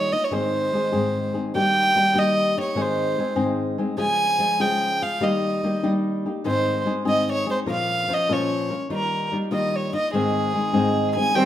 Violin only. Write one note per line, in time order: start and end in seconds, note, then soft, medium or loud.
0.00 0.14 C#5 medium
0.12 0.25 D#5 medium
0.24 0.35 C#5 medium
0.34 1.36 C5 medium
1.57 2.20 G5 medium
2.19 2.59 D#5 medium
2.61 2.83 C#5 medium
2.81 3.40 C5 medium
4.00 4.62 G#5 medium
4.61 5.04 G5 medium
5.02 5.24 F5 medium
5.23 5.84 D#5 medium
6.47 6.85 C5 medium
7.09 7.28 D#5 medium
7.32 7.49 C#5 medium
7.51 7.59 C5 medium
7.71 8.15 F5 medium
8.13 8.34 D#5 medium
8.33 8.77 C#5 medium
8.94 9.31 A#4 medium
9.53 9.77 D#5 medium
9.76 9.94 C#5 medium
9.96 10.13 D#5 medium
10.15 11.13 G#4 medium
11.16 11.37 G#5 medium
11.35 11.45 G5 medium